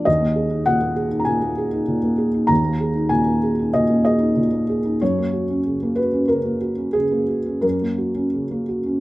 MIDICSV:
0, 0, Header, 1, 2, 480
1, 0, Start_track
1, 0, Tempo, 606673
1, 55, Time_signature, 4, 2, 24, 8
1, 1976, Tempo, 630252
1, 4856, Tempo, 660793
1, 5336, Tempo, 697674
1, 6755, End_track
2, 0, Start_track
2, 0, Title_t, "Felt piano"
2, 0, Program_c, 0, 0
2, 0, Control_c, 0, 64, 127
2, 42, Note_on_c, 0, 75, 75
2, 56, Note_on_c, 0, 39, 47
2, 69, Control_c, 0, 64, 0
2, 164, Note_on_c, 0, 58, 36
2, 181, Control_c, 0, 64, 127
2, 282, Note_on_c, 0, 68, 41
2, 363, Note_off_c, 0, 58, 0
2, 398, Note_on_c, 0, 63, 37
2, 482, Note_off_c, 0, 68, 0
2, 520, Note_on_c, 0, 78, 80
2, 531, Note_off_c, 0, 75, 0
2, 532, Note_on_c, 0, 46, 36
2, 601, Note_off_c, 0, 63, 0
2, 641, Note_on_c, 0, 58, 38
2, 727, Note_off_c, 0, 46, 0
2, 760, Note_on_c, 0, 68, 43
2, 841, Note_off_c, 0, 58, 0
2, 876, Note_on_c, 0, 63, 36
2, 946, Note_on_c, 0, 82, 48
2, 955, Note_off_c, 0, 78, 0
2, 959, Note_off_c, 0, 68, 0
2, 987, Note_off_c, 0, 39, 0
2, 987, Note_on_c, 0, 80, 67
2, 1000, Note_on_c, 0, 46, 35
2, 1007, Note_off_c, 0, 82, 0
2, 1077, Note_off_c, 0, 63, 0
2, 1122, Note_on_c, 0, 58, 37
2, 1198, Note_off_c, 0, 46, 0
2, 1249, Note_on_c, 0, 68, 42
2, 1318, Note_off_c, 0, 58, 0
2, 1369, Note_on_c, 0, 63, 38
2, 1441, Note_off_c, 0, 68, 0
2, 1485, Note_on_c, 0, 46, 43
2, 1561, Note_off_c, 0, 63, 0
2, 1607, Note_on_c, 0, 58, 34
2, 1680, Note_off_c, 0, 46, 0
2, 1722, Note_on_c, 0, 68, 34
2, 1803, Note_off_c, 0, 58, 0
2, 1851, Note_on_c, 0, 63, 40
2, 1923, Note_off_c, 0, 68, 0
2, 1955, Note_on_c, 0, 82, 80
2, 1962, Note_off_c, 0, 80, 0
2, 1967, Note_on_c, 0, 39, 52
2, 1989, Control_c, 0, 64, 0
2, 2047, Note_off_c, 0, 63, 0
2, 2089, Note_on_c, 0, 58, 38
2, 2138, Control_c, 0, 64, 127
2, 2209, Note_on_c, 0, 68, 40
2, 2282, Note_off_c, 0, 58, 0
2, 2325, Note_on_c, 0, 63, 42
2, 2401, Note_off_c, 0, 68, 0
2, 2429, Note_on_c, 0, 80, 78
2, 2440, Note_on_c, 0, 46, 38
2, 2441, Note_off_c, 0, 82, 0
2, 2518, Note_off_c, 0, 63, 0
2, 2559, Note_on_c, 0, 58, 40
2, 2634, Note_off_c, 0, 46, 0
2, 2686, Note_on_c, 0, 68, 41
2, 2753, Note_off_c, 0, 58, 0
2, 2808, Note_on_c, 0, 63, 34
2, 2876, Note_off_c, 0, 68, 0
2, 2891, Note_off_c, 0, 39, 0
2, 2914, Note_off_c, 0, 80, 0
2, 2919, Note_on_c, 0, 75, 69
2, 2929, Note_on_c, 0, 46, 36
2, 2998, Note_off_c, 0, 63, 0
2, 3043, Note_on_c, 0, 58, 34
2, 3119, Note_off_c, 0, 46, 0
2, 3144, Note_off_c, 0, 75, 0
2, 3155, Note_on_c, 0, 75, 75
2, 3163, Note_on_c, 0, 68, 39
2, 3237, Note_off_c, 0, 58, 0
2, 3269, Note_on_c, 0, 63, 34
2, 3358, Note_off_c, 0, 68, 0
2, 3397, Note_on_c, 0, 46, 42
2, 3402, Note_off_c, 0, 75, 0
2, 3471, Note_off_c, 0, 63, 0
2, 3518, Note_on_c, 0, 58, 33
2, 3595, Note_off_c, 0, 46, 0
2, 3647, Note_on_c, 0, 68, 37
2, 3715, Note_off_c, 0, 58, 0
2, 3767, Note_on_c, 0, 63, 38
2, 3840, Note_off_c, 0, 68, 0
2, 3888, Note_off_c, 0, 63, 0
2, 3893, Note_on_c, 0, 73, 80
2, 3899, Note_on_c, 0, 42, 53
2, 3901, Control_c, 0, 64, 0
2, 4021, Note_on_c, 0, 58, 34
2, 4038, Control_c, 0, 64, 127
2, 4133, Note_on_c, 0, 66, 38
2, 4210, Note_off_c, 0, 58, 0
2, 4263, Note_on_c, 0, 61, 33
2, 4327, Note_off_c, 0, 66, 0
2, 4384, Note_on_c, 0, 49, 36
2, 4451, Note_off_c, 0, 61, 0
2, 4511, Note_on_c, 0, 58, 37
2, 4571, Note_off_c, 0, 49, 0
2, 4608, Note_on_c, 0, 71, 69
2, 4617, Note_off_c, 0, 73, 0
2, 4617, Note_on_c, 0, 66, 40
2, 4695, Note_off_c, 0, 58, 0
2, 4741, Note_on_c, 0, 61, 35
2, 4810, Note_off_c, 0, 66, 0
2, 4834, Note_off_c, 0, 42, 0
2, 4854, Note_off_c, 0, 71, 0
2, 4856, Note_on_c, 0, 70, 64
2, 4865, Note_on_c, 0, 49, 35
2, 4931, Note_off_c, 0, 61, 0
2, 4983, Note_on_c, 0, 58, 33
2, 5051, Note_off_c, 0, 49, 0
2, 5096, Note_on_c, 0, 66, 37
2, 5171, Note_off_c, 0, 58, 0
2, 5215, Note_on_c, 0, 61, 35
2, 5289, Note_off_c, 0, 66, 0
2, 5329, Note_on_c, 0, 68, 73
2, 5337, Note_off_c, 0, 70, 0
2, 5342, Note_on_c, 0, 49, 36
2, 5407, Note_off_c, 0, 61, 0
2, 5455, Note_on_c, 0, 58, 32
2, 5526, Note_off_c, 0, 49, 0
2, 5571, Note_on_c, 0, 66, 29
2, 5644, Note_off_c, 0, 58, 0
2, 5693, Note_on_c, 0, 61, 33
2, 5763, Note_off_c, 0, 66, 0
2, 5800, Note_on_c, 0, 70, 65
2, 5808, Note_off_c, 0, 68, 0
2, 5808, Note_on_c, 0, 42, 41
2, 5828, Control_c, 0, 64, 0
2, 5887, Note_off_c, 0, 61, 0
2, 5937, Note_on_c, 0, 58, 28
2, 5944, Control_c, 0, 64, 127
2, 6051, Note_on_c, 0, 66, 36
2, 6131, Note_off_c, 0, 58, 0
2, 6168, Note_on_c, 0, 61, 35
2, 6247, Note_off_c, 0, 66, 0
2, 6296, Note_on_c, 0, 49, 32
2, 6366, Note_off_c, 0, 61, 0
2, 6417, Note_on_c, 0, 58, 32
2, 6490, Note_off_c, 0, 49, 0
2, 6536, Note_on_c, 0, 66, 35
2, 6610, Note_off_c, 0, 58, 0
2, 6655, Note_on_c, 0, 61, 26
2, 6728, Note_off_c, 0, 66, 0
2, 6747, Note_off_c, 0, 42, 0
2, 6755, Note_off_c, 0, 61, 0
2, 6755, Note_off_c, 0, 70, 0
2, 6755, End_track
0, 0, End_of_file